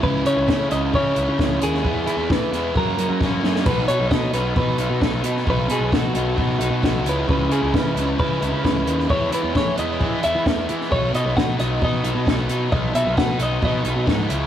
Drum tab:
CC |----------------|----------------|x---------------|----------------|
HH |--x---x---x---x-|--x---x---x-----|--x---x---x---x-|--x---x---x---x-|
SD |----o-------o--o|----o-o-----o-oo|----o-o-----o--o|----o-------o---|
BD |o---o---o---o---|o---o---o---o---|o---o---o---o---|o---o---o---o---|

CC |----------------|----------------|----------------|----------------|
HH |--x---x---x---x-|--x---x---x---x-|--x---x---x---x-|--x---x---x---x-|
SD |----o-o-----o--o|----o-------o--o|----o-o-----o---|----o-------o---|
BD |o---o---o---o---|o---o---o---o---|o---o---o---o---|o---o---o---o---|